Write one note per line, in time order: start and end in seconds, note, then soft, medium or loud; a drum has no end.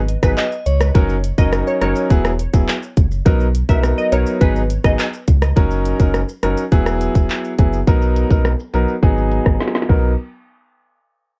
0.00 0.17 G#1 loud
0.08 closed hi-hat medium
0.08 shaker soft
0.23 0.35 G#1 loud
0.23 0.42 F#3 medium
0.23 0.42 B3 medium
0.23 0.42 D#4 medium
0.23 0.42 G#4 medium
0.23 0.33 B4 medium
0.23 kick loud
0.23 cross-stick loud
0.23 shaker medium
0.23 maracas medium
0.37 0.67 D#5 loud
0.37 clap medium
0.37 shaker medium
0.37 maracas medium
0.52 maracas medium
0.52 shaker medium
0.66 0.91 C#2 medium
0.66 1.20 C#5 loud
0.66 closed hi-hat medium
0.66 maracas medium
0.66 shaker medium
0.81 cross-stick loud
0.81 shaker medium
0.81 maracas medium
0.95 1.32 F#1 loud
0.95 1.14 F#3 loud
0.95 1.14 C#4 medium
0.95 1.14 D#4 medium
0.95 1.14 A#4 loud
0.95 kick loud
0.95 shaker medium
0.95 maracas medium
1.09 maracas medium
1.09 shaker medium
1.24 closed hi-hat medium
1.24 shaker medium
1.24 maracas medium
1.38 1.63 F#1 loud
1.38 1.78 F#3 medium
1.38 1.78 C#4 medium
1.38 1.78 D#4 medium
1.38 1.78 A#4 medium
1.38 1.49 D#5 medium
1.38 kick medium
1.38 maracas medium
1.38 shaker medium
1.53 cross-stick loud
1.53 shaker medium
1.53 maracas medium
1.67 1.77 C#5 medium
1.67 shaker medium
1.67 maracas medium
1.81 1.94 F#1 medium
1.81 2.08 F#3 medium
1.81 2.08 C#4 medium
1.81 2.08 D#4 medium
1.81 2.08 A#4 medium
1.81 1.92 C#5 medium
1.81 cross-stick medium
1.81 closed hi-hat medium
1.81 shaker medium
1.81 maracas medium
1.96 maracas medium
1.96 shaker medium
2.10 2.48 E1 loud
2.10 2.30 F#3 loud
2.10 2.30 B3 medium
2.10 2.30 E4 medium
2.10 2.30 G#4 loud
2.10 kick loud
2.10 maracas medium
2.10 shaker medium
2.25 cross-stick loud
2.25 maracas medium
2.25 shaker soft
2.39 closed hi-hat medium
2.39 shaker soft
2.53 2.66 E1 medium
2.53 2.73 F#3 medium
2.53 2.73 B3 medium
2.53 2.73 E4 medium
2.53 2.73 G#4 medium
2.53 kick loud
2.53 shaker medium
2.53 maracas medium
2.68 clap loud
2.68 shaker medium
2.68 maracas medium
2.83 maracas medium
2.83 shaker medium
2.97 3.22 F#1 loud
2.97 kick loud
2.97 closed hi-hat medium
2.97 maracas soft
2.97 shaker soft
3.11 maracas medium
3.11 shaker medium
3.25 3.63 B1 loud
3.25 3.45 F#3 medium
3.25 3.45 B3 medium
3.25 3.45 D#4 medium
3.25 3.45 A#4 loud
3.25 kick loud
3.25 maracas medium
3.25 shaker medium
3.40 maracas soft
3.40 shaker medium
3.55 closed hi-hat medium
3.55 shaker medium
3.55 maracas medium
3.69 3.94 B1 loud
3.69 4.09 F#3 medium
3.69 4.09 B3 medium
3.69 4.09 D#4 medium
3.69 4.09 A#4 medium
3.69 3.79 E5 medium
3.69 kick medium
3.69 maracas medium
3.69 shaker medium
3.83 cross-stick loud
3.83 high timbale medium
3.83 shaker medium
3.83 maracas medium
3.98 4.08 D#5 medium
3.98 maracas medium
3.98 shaker medium
4.12 4.25 B1 loud
4.12 4.39 F#3 medium
4.12 4.39 B3 medium
4.12 4.39 D#4 medium
4.12 4.39 A#4 medium
4.12 4.22 C#5 medium
4.12 closed hi-hat medium
4.12 shaker medium
4.12 maracas medium
4.26 maracas medium
4.26 shaker medium
4.41 4.78 G#1 loud
4.41 4.60 F#3 medium
4.41 4.60 B3 medium
4.41 4.60 D#4 medium
4.41 4.60 G#4 loud
4.41 4.51 B4 medium
4.41 kick loud
4.41 shaker medium
4.41 maracas medium
4.56 shaker medium
4.56 maracas medium
4.70 closed hi-hat medium
4.70 shaker soft
4.70 maracas soft
4.84 4.97 G#1 loud
4.84 5.04 F#3 medium
4.84 5.04 B3 medium
4.84 5.04 D#4 medium
4.84 5.04 G#4 medium
4.84 4.95 D#5 medium
4.84 kick medium
4.84 cross-stick loud
4.84 shaker medium
4.84 maracas medium
4.99 clap loud
4.99 shaker medium
4.99 maracas medium
5.13 maracas medium
5.13 shaker medium
5.28 5.53 C#2 medium
5.28 kick loud
5.28 closed hi-hat medium
5.28 maracas medium
5.28 shaker soft
5.42 cross-stick loud
5.42 shaker medium
5.42 maracas medium
5.56 5.94 F#1 loud
5.56 5.96 F#3 medium
5.56 5.96 C#4 medium
5.56 5.96 D#4 medium
5.56 5.96 A#4 loud
5.56 kick loud
5.56 maracas medium
5.56 shaker medium
5.71 maracas soft
5.71 shaker medium
5.85 closed hi-hat medium
5.85 shaker medium
5.85 maracas soft
5.99 6.25 F#1 loud
5.99 6.19 F#3 medium
5.99 6.19 C#4 medium
5.99 6.19 D#4 medium
5.99 6.19 A#4 medium
5.99 kick medium
5.99 maracas medium
5.99 shaker medium
6.14 cross-stick medium
6.14 shaker medium
6.14 maracas medium
6.29 shaker medium
6.29 maracas medium
6.43 6.56 F#1 medium
6.43 6.62 F#3 medium
6.43 6.62 C#4 medium
6.43 6.62 D#4 medium
6.43 6.63 A#4 medium
6.43 cross-stick medium
6.43 closed hi-hat medium
6.43 shaker medium
6.43 maracas medium
6.57 maracas medium
6.57 shaker medium
6.72 7.09 E1 loud
6.72 7.51 F#3 loud
6.72 7.52 B3 medium
6.72 7.52 E4 medium
6.72 7.52 G#4 loud
6.72 kick loud
6.72 shaker medium
6.72 maracas medium
6.86 cross-stick loud
6.86 shaker soft
6.86 maracas medium
7.01 closed hi-hat medium
7.01 shaker soft
7.01 maracas soft
7.15 7.28 E1 medium
7.15 kick medium
7.15 shaker medium
7.15 maracas medium
7.30 clap medium
7.30 shaker medium
7.30 maracas medium
7.44 maracas medium
7.44 shaker medium
7.58 7.83 F#1 loud
7.58 7.78 F#3 medium
7.58 7.78 B3 medium
7.58 7.78 E4 medium
7.58 7.78 G#4 medium
7.58 kick loud
7.58 closed hi-hat medium
7.58 maracas soft
7.58 shaker soft
7.73 shaker medium
7.73 maracas medium
7.87 8.25 B1 loud
7.87 8.27 F#3 loud
7.87 8.27 B3 medium
7.87 8.27 D#4 medium
7.87 8.27 A#4 loud
7.87 kick loud
7.87 shaker medium
7.87 maracas medium
8.02 shaker medium
8.02 maracas soft
8.16 closed hi-hat medium
8.16 shaker medium
8.16 maracas medium
8.30 8.55 B1 loud
8.30 8.50 F#3 medium
8.30 8.50 B3 medium
8.30 8.50 D#4 medium
8.30 8.50 A#4 medium
8.30 kick medium
8.30 maracas medium
8.30 shaker medium
8.45 cross-stick loud
8.45 high timbale medium
8.45 shaker medium
8.45 maracas medium
8.59 shaker medium
8.59 maracas medium
8.74 8.86 B1 medium
8.74 8.93 F#3 medium
8.74 8.93 B3 medium
8.74 8.93 D#4 medium
8.74 8.93 A#4 medium
8.74 closed hi-hat medium
8.74 shaker medium
8.74 maracas medium
8.88 maracas medium
8.88 shaker medium
9.03 9.40 G#1 loud
9.03 9.82 F#3 medium
9.03 9.82 B3 medium
9.03 9.82 D#4 medium
9.03 9.83 G#4 loud
9.03 kick loud
9.03 shaker medium
9.03 maracas medium
9.17 shaker soft
9.17 maracas medium
9.32 closed hi-hat medium
9.32 shaker soft
9.32 maracas soft
9.46 9.58 G#1 medium
9.46 kick loud
9.46 cross-stick loud
9.46 shaker medium
9.46 maracas medium
9.60 snare medium
9.60 shaker medium
9.60 maracas medium
9.68 snare medium
9.75 snare medium
9.75 maracas medium
9.82 snare medium
9.89 10.16 B1 loud
9.89 10.10 F#3 medium
9.89 10.11 B3 medium
9.89 10.11 D#4 medium
9.89 10.11 A#4 loud
9.89 kick loud
9.89 crash medium
9.89 maracas medium